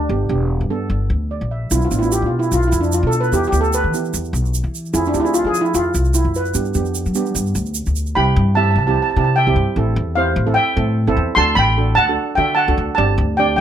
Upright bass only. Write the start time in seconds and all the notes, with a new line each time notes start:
0.09 G1
0.29 E1
0.61 G2
0.90 G1
1.10 D2
1.41 A#1
1.71 B1
1.91 A1
2.22 B2
2.52 B1
2.72 F2
3.03 B2
3.32 E2
3.52 D2
3.84 E3
4.14 E2
4.33 B1
4.64 E3
4.94 F2
5.14 D2
5.45 F3
5.74 F2
5.94 C2
6.25 F#2
6.55 G2
6.75 F2
7.06 G3
7.35 G2
7.55 D2
7.87 D2
8.16 C2
8.36 G2
8.76 C2
9.16 C3
9.47 C2
9.56 G2
9.76 A1
9.96 E2
10.36 A1
10.77 A2
11.07 A1
11.17 E2
11.36 D2
11.56 A1
11.97 D2
12.37 D3
12.68 D2
12.78 D2
12.98 G1
13.18 D2